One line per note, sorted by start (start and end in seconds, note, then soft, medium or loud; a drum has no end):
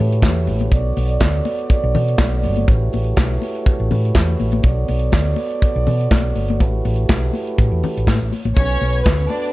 0.00 0.24 A2 loud
0.00 0.70 A3 medium
0.00 0.70 E4 medium
0.00 0.68 F#4 medium
0.00 0.71 G4 medium
0.00 0.71 B4 medium
0.00 0.70 C#5 medium
0.12 closed hi-hat soft
0.22 0.49 E2 medium
0.22 kick loud
0.22 snare loud
0.22 clap medium
0.22 closed hi-hat medium
0.22 high conga medium
0.47 0.67 A1 medium
0.47 open hi-hat medium
0.47 high conga medium
0.60 closed hi-hat soft
0.60 high conga medium
0.72 0.91 B1 medium
0.72 2.66 B3 medium
0.72 4.60 F#4 medium
0.72 2.66 A4 medium
0.72 8.53 C#5 medium
0.72 2.66 D5 medium
0.72 kick loud
0.72 closed hi-hat medium
0.97 1.16 B1 medium
0.97 open hi-hat medium
0.97 muted conga soft
1.08 closed hi-hat soft
1.20 1.40 D2 medium
1.20 kick loud
1.20 snare loud
1.20 clap loud
1.20 closed hi-hat medium
1.20 high conga medium
1.45 open hi-hat medium
1.45 muted conga medium
1.59 closed hi-hat soft
1.70 kick loud
1.70 closed hi-hat medium
1.84 1.92 B1 loud
1.95 2.14 B2 medium
1.95 open hi-hat medium
1.95 muted conga soft
1.95 low conga medium
2.08 closed hi-hat medium
2.18 2.46 B1 medium
2.18 kick loud
2.18 snare loud
2.18 clap medium
2.18 closed hi-hat medium
2.18 high conga medium
2.43 2.64 G1 loud
2.43 open hi-hat medium
2.43 high conga medium
2.56 closed hi-hat soft
2.56 high conga medium
2.68 2.88 A1 loud
2.68 4.62 A3 medium
2.68 4.63 E4 medium
2.68 4.62 G4 medium
2.68 4.62 B4 medium
2.68 kick loud
2.68 closed hi-hat medium
2.93 3.13 A1 medium
2.93 open hi-hat medium
2.93 muted conga soft
3.04 closed hi-hat soft
3.17 3.37 B1 medium
3.17 kick loud
3.17 snare loud
3.17 clap medium
3.17 closed hi-hat medium
3.17 high conga medium
3.42 open hi-hat medium
3.42 muted conga soft
3.55 closed hi-hat soft
3.66 kick loud
3.66 closed hi-hat medium
3.80 3.89 A1 medium
3.91 4.10 A2 medium
3.91 open hi-hat medium
3.91 muted conga soft
3.91 low conga medium
4.05 closed hi-hat medium
4.15 4.34 E2 loud
4.15 kick loud
4.15 snare loud
4.15 clap medium
4.15 closed hi-hat medium
4.15 high conga medium
4.40 4.59 A1 medium
4.40 open hi-hat medium
4.40 high conga medium
4.52 closed hi-hat soft
4.52 high conga medium
4.63 4.84 B1 medium
4.63 6.59 B3 medium
4.63 8.39 F#4 medium
4.63 6.59 A4 medium
4.63 6.59 D5 medium
4.63 kick loud
4.63 closed hi-hat medium
4.88 5.08 B1 medium
4.88 open hi-hat medium
4.88 muted conga soft
4.99 closed hi-hat soft
5.12 5.33 D2 medium
5.12 kick loud
5.12 snare loud
5.12 clap medium
5.12 closed hi-hat medium
5.12 high conga medium
5.36 open hi-hat medium
5.36 muted conga medium
5.50 closed hi-hat soft
5.62 kick loud
5.62 closed hi-hat medium
5.76 5.85 B1 loud
5.87 6.07 B2 medium
5.87 open hi-hat medium
5.87 muted conga soft
5.87 low conga medium
6.01 closed hi-hat medium
6.11 6.31 B1 loud
6.11 kick loud
6.11 snare loud
6.11 clap medium
6.11 closed hi-hat medium
6.11 high conga medium
6.36 6.61 G1 medium
6.36 open hi-hat medium
6.36 high conga medium
6.48 closed hi-hat soft
6.48 high conga medium
6.60 6.80 A1 medium
6.60 8.39 A3 medium
6.60 8.39 E4 medium
6.60 8.39 G4 medium
6.60 8.39 B4 medium
6.60 kick loud
6.60 closed hi-hat medium
6.85 7.05 A1 medium
6.85 open hi-hat medium
6.85 muted conga soft
6.96 closed hi-hat soft
7.09 7.29 B1 medium
7.09 kick loud
7.09 snare loud
7.09 clap medium
7.09 closed hi-hat medium
7.09 high conga medium
7.33 open hi-hat medium
7.33 muted conga soft
7.47 closed hi-hat soft
7.58 7.69 A2 medium
7.58 kick loud
7.58 closed hi-hat medium
7.71 7.81 E2 medium
7.83 open hi-hat medium
7.83 low conga medium
7.97 8.06 A1 medium
7.97 closed hi-hat medium
8.07 8.18 A2 loud
8.07 kick loud
8.07 snare loud
8.07 clap medium
8.07 closed hi-hat medium
8.07 high conga medium
8.21 8.30 A1 medium
8.32 open hi-hat medium
8.32 high conga medium
8.45 8.54 A1 medium
8.45 closed hi-hat soft
8.45 high conga medium
8.56 8.76 B1 loud
8.56 9.53 B3 medium
8.56 9.03 C#4 medium
8.56 9.53 F#4 medium
8.56 9.53 A4 medium
8.56 9.53 B4 medium
8.56 9.03 C#5 loud
8.56 kick loud
8.56 closed hi-hat medium
8.81 9.01 B1 medium
8.81 open hi-hat medium
8.81 muted conga soft
8.93 closed hi-hat soft
9.05 9.26 D2 medium
9.05 9.16 B3 medium
9.05 9.16 B4 medium
9.05 kick loud
9.05 snare loud
9.05 clap medium
9.05 closed hi-hat medium
9.05 high conga medium
9.17 9.27 C#4 medium
9.17 9.27 C#5 medium
9.28 9.49 D4 medium
9.28 9.49 D5 medium
9.28 open hi-hat medium
9.28 muted conga soft
9.45 closed hi-hat soft